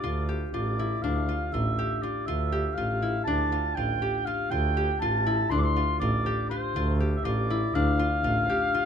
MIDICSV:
0, 0, Header, 1, 4, 480
1, 0, Start_track
1, 0, Key_signature, -1, "minor"
1, 0, Tempo, 497100
1, 37, Time_signature, 9, 3, 24, 8
1, 8548, End_track
2, 0, Start_track
2, 0, Title_t, "Oboe"
2, 0, Program_c, 0, 68
2, 0, Note_on_c, 0, 74, 69
2, 271, Note_off_c, 0, 74, 0
2, 513, Note_on_c, 0, 74, 69
2, 985, Note_on_c, 0, 77, 78
2, 999, Note_off_c, 0, 74, 0
2, 1474, Note_on_c, 0, 76, 73
2, 1488, Note_off_c, 0, 77, 0
2, 1947, Note_on_c, 0, 74, 69
2, 1962, Note_off_c, 0, 76, 0
2, 2182, Note_on_c, 0, 76, 72
2, 2197, Note_off_c, 0, 74, 0
2, 2647, Note_on_c, 0, 77, 76
2, 2661, Note_off_c, 0, 76, 0
2, 3124, Note_off_c, 0, 77, 0
2, 3130, Note_on_c, 0, 81, 91
2, 3624, Note_on_c, 0, 79, 78
2, 3639, Note_off_c, 0, 81, 0
2, 4106, Note_on_c, 0, 77, 81
2, 4121, Note_off_c, 0, 79, 0
2, 4350, Note_on_c, 0, 79, 86
2, 4365, Note_off_c, 0, 77, 0
2, 4820, Note_off_c, 0, 79, 0
2, 4825, Note_on_c, 0, 81, 92
2, 5310, Note_on_c, 0, 84, 91
2, 5325, Note_off_c, 0, 81, 0
2, 5396, Note_on_c, 0, 86, 76
2, 5410, Note_off_c, 0, 84, 0
2, 5443, Note_on_c, 0, 84, 89
2, 5457, Note_off_c, 0, 86, 0
2, 5785, Note_off_c, 0, 84, 0
2, 5791, Note_on_c, 0, 74, 88
2, 6242, Note_off_c, 0, 74, 0
2, 6271, Note_on_c, 0, 72, 80
2, 6704, Note_off_c, 0, 72, 0
2, 6920, Note_on_c, 0, 76, 63
2, 6989, Note_on_c, 0, 74, 86
2, 7004, Note_off_c, 0, 76, 0
2, 7478, Note_on_c, 0, 77, 118
2, 7493, Note_off_c, 0, 74, 0
2, 8548, Note_off_c, 0, 77, 0
2, 8548, End_track
3, 0, Start_track
3, 0, Title_t, "Harp"
3, 0, Program_c, 1, 46
3, 0, Note_on_c, 1, 62, 70
3, 0, Note_on_c, 1, 67, 64
3, 35, Note_on_c, 1, 65, 78
3, 273, Note_off_c, 1, 67, 0
3, 277, Note_on_c, 1, 67, 64
3, 516, Note_off_c, 1, 65, 0
3, 520, Note_on_c, 1, 65, 70
3, 766, Note_on_c, 1, 64, 63
3, 824, Note_off_c, 1, 65, 0
3, 997, Note_off_c, 1, 62, 0
3, 1001, Note_on_c, 1, 62, 65
3, 1242, Note_on_c, 1, 65, 63
3, 1300, Note_off_c, 1, 64, 0
3, 1481, Note_off_c, 1, 65, 0
3, 1485, Note_on_c, 1, 65, 67
3, 1721, Note_off_c, 1, 67, 0
3, 1725, Note_on_c, 1, 67, 66
3, 1959, Note_off_c, 1, 65, 0
3, 1963, Note_on_c, 1, 65, 64
3, 2196, Note_off_c, 1, 65, 0
3, 2200, Note_on_c, 1, 65, 72
3, 2433, Note_off_c, 1, 67, 0
3, 2437, Note_on_c, 1, 67, 63
3, 2676, Note_off_c, 1, 65, 0
3, 2680, Note_on_c, 1, 65, 65
3, 2919, Note_on_c, 1, 64, 61
3, 2977, Note_off_c, 1, 65, 0
3, 3158, Note_off_c, 1, 62, 0
3, 3162, Note_on_c, 1, 62, 66
3, 3401, Note_on_c, 1, 65, 62
3, 3459, Note_off_c, 1, 64, 0
3, 3638, Note_off_c, 1, 65, 0
3, 3642, Note_on_c, 1, 65, 67
3, 3877, Note_off_c, 1, 67, 0
3, 3881, Note_on_c, 1, 67, 64
3, 4119, Note_off_c, 1, 65, 0
3, 4123, Note_on_c, 1, 65, 69
3, 4355, Note_off_c, 1, 65, 0
3, 4359, Note_on_c, 1, 65, 76
3, 4601, Note_off_c, 1, 67, 0
3, 4604, Note_on_c, 1, 67, 65
3, 4842, Note_off_c, 1, 65, 0
3, 4846, Note_on_c, 1, 65, 75
3, 5084, Note_on_c, 1, 64, 69
3, 5142, Note_off_c, 1, 65, 0
3, 5319, Note_off_c, 1, 62, 0
3, 5323, Note_on_c, 1, 62, 63
3, 5565, Note_on_c, 1, 65, 69
3, 5623, Note_off_c, 1, 64, 0
3, 5804, Note_off_c, 1, 65, 0
3, 5808, Note_on_c, 1, 65, 72
3, 6041, Note_off_c, 1, 67, 0
3, 6045, Note_on_c, 1, 67, 70
3, 6282, Note_off_c, 1, 65, 0
3, 6286, Note_on_c, 1, 65, 70
3, 6522, Note_off_c, 1, 65, 0
3, 6526, Note_on_c, 1, 65, 75
3, 6759, Note_off_c, 1, 67, 0
3, 6763, Note_on_c, 1, 67, 63
3, 6998, Note_off_c, 1, 65, 0
3, 7002, Note_on_c, 1, 65, 76
3, 7246, Note_on_c, 1, 64, 70
3, 7304, Note_off_c, 1, 65, 0
3, 7481, Note_off_c, 1, 62, 0
3, 7484, Note_on_c, 1, 62, 69
3, 7718, Note_on_c, 1, 65, 70
3, 7776, Note_off_c, 1, 64, 0
3, 7954, Note_off_c, 1, 65, 0
3, 7958, Note_on_c, 1, 65, 73
3, 8199, Note_off_c, 1, 67, 0
3, 8202, Note_on_c, 1, 67, 68
3, 8439, Note_off_c, 1, 65, 0
3, 8443, Note_on_c, 1, 65, 80
3, 8548, Note_off_c, 1, 62, 0
3, 8548, Note_off_c, 1, 65, 0
3, 8548, Note_off_c, 1, 67, 0
3, 8548, End_track
4, 0, Start_track
4, 0, Title_t, "Double bass"
4, 0, Program_c, 2, 43
4, 29, Note_on_c, 2, 38, 79
4, 475, Note_off_c, 2, 38, 0
4, 515, Note_on_c, 2, 33, 81
4, 959, Note_off_c, 2, 33, 0
4, 993, Note_on_c, 2, 38, 82
4, 1217, Note_off_c, 2, 38, 0
4, 1477, Note_on_c, 2, 33, 79
4, 1700, Note_off_c, 2, 33, 0
4, 2201, Note_on_c, 2, 38, 79
4, 2643, Note_off_c, 2, 38, 0
4, 2683, Note_on_c, 2, 33, 75
4, 3125, Note_off_c, 2, 33, 0
4, 3153, Note_on_c, 2, 38, 80
4, 3379, Note_off_c, 2, 38, 0
4, 3633, Note_on_c, 2, 33, 80
4, 3859, Note_off_c, 2, 33, 0
4, 4354, Note_on_c, 2, 38, 83
4, 4800, Note_off_c, 2, 38, 0
4, 4835, Note_on_c, 2, 33, 83
4, 5280, Note_off_c, 2, 33, 0
4, 5312, Note_on_c, 2, 38, 87
4, 5538, Note_off_c, 2, 38, 0
4, 5790, Note_on_c, 2, 33, 80
4, 6016, Note_off_c, 2, 33, 0
4, 6513, Note_on_c, 2, 38, 90
4, 6958, Note_off_c, 2, 38, 0
4, 6989, Note_on_c, 2, 33, 87
4, 7435, Note_off_c, 2, 33, 0
4, 7469, Note_on_c, 2, 38, 88
4, 7694, Note_off_c, 2, 38, 0
4, 7953, Note_on_c, 2, 33, 80
4, 8176, Note_off_c, 2, 33, 0
4, 8548, End_track
0, 0, End_of_file